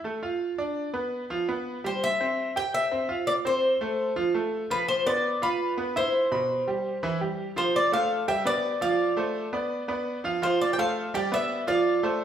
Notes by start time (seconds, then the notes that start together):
0.04 A3 A4
0.23 F4 F5
0.58 D4 D5
0.93 B3 B4
1.30 F3 F4
1.48 B3 B4
1.84 G3 G4 C5
2.04 E5
2.20 C4 C5
2.56 G4 G5
2.74 E5
2.91 C4 C5
3.09 F4 F5
3.27 D5
3.45 C4 C5
3.81 A3 A4
4.16 F3 F4
4.34 A3 A4
4.70 F3 F4 B4
4.88 C5
5.07 B3 B4 D5
5.42 F4 B4 F5
5.77 B3 B4
5.96 E4 C5 E5
6.32 B2 B5
6.67 G3 G4
7.03 E3 E4
7.21 G3 G4
7.56 F3 F4 C5 F5
7.76 D5
7.92 A3 A4 C5 F5
8.28 G3 G4 E5 G5
8.45 B3 B4 D5
8.81 F3 F4 D5 F5
9.17 A3 A4 C5
9.53 B3 B4 D5
9.88 B3 B4 D5
10.24 F3 F4 F5
10.42 F3 F4 C5 F5
10.61 D5
10.73 G5
10.78 A3 A4 C5 F5
11.14 G3 G4 D5 G5
11.32 B3 B4 D5 E5
11.67 F3 F4 D5 F5
12.03 A3 A4 C5